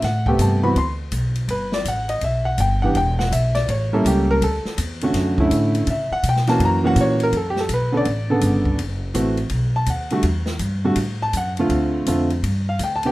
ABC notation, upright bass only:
X:1
M:4/4
L:1/8
Q:"Swing" 1/4=164
K:D
V:1 name="Upright bass" clef=bass
A,,2 G,,2 D,,2 B,,,2 | G,,,2 A,,,2 B,,,2 G,,,2 | E,,,2 B,,,2 A,,,2 C,,2 | D,, z E,,2 F,,2 A,,2 |
C, z B,,2 F,,2 ^A,,2 | [K:Bm] F,,2 B,,,2 A,,,2 G,,,2 | F,,,2 A,,,2 B,,,2 ^D,,2 | E,,2 G,,2 A,,2 F,,2 |
D,,2 =F,,2 G,,2 D,,2 |]